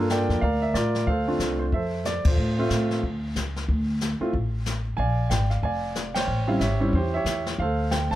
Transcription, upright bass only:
Already playing: G2
0.29 F2
0.42 D2
0.73 A2
1.07 D2
1.39 C2
1.72 F2
2.25 E2
2.37 A2
2.70 A2
3.03 D2
3.35 C#2
3.68 D2
4.20 muted upright bass stroke
4.33 A1
4.98 A#1
5.30 G#1
5.63 F1
6.27 A1
6.60 G#1
6.93 E2
7.25 E2
7.58 D2
8.11 C#2

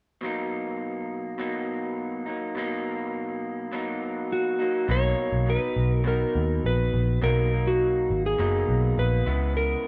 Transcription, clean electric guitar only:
0.21 B2 F#3 A#3
0.25 D#4
1.38 B2 F#3 A#3 D#4
2.26 F#3 A#3 D#4
2.55 B2 F#3 A#3
2.59 D#4
3.72 B2 F#3 A#3 D#4
4.59 F#3 A#3 D#4
4.88 B2 F#3 A#3 D#4
5.46 B2 F#3 D#4
6.04 B2 F#3
6.08 D#4
7.22 B2 F#3 A#3 D#4
7.51 F#3 A#3 D#4
8.39 B2 F#3 A#3 D#4
9.26 C#3 G#3 B3 E4

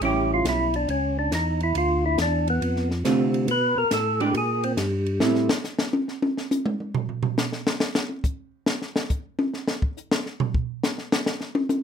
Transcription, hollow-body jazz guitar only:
0.02 G3 C#4 E4
3.05 D3 A3 C4 F4
4.21 G#3 D4 G4
5.20 G3 C4 E4

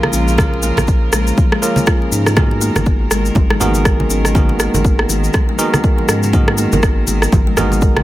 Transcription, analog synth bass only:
0.13 A#1
0.78 A#1
1.13 A#1
2.12 G#2
2.76 G#1
3.11 G#1
3.36 G#1
4.10 G#1
4.74 G#1
5.09 G#1
6.08 G#2
6.73 G#1
7.08 G#1
7.32 G#1

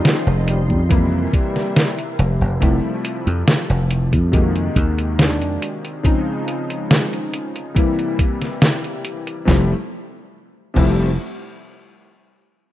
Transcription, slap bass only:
0.27 F1
0.70 F2
2.19 F1
2.41 F1
2.62 F1
3.27 F2
3.70 F1
4.13 F2
4.76 D#2
5.41 F2
9.48 F1
10.76 F1

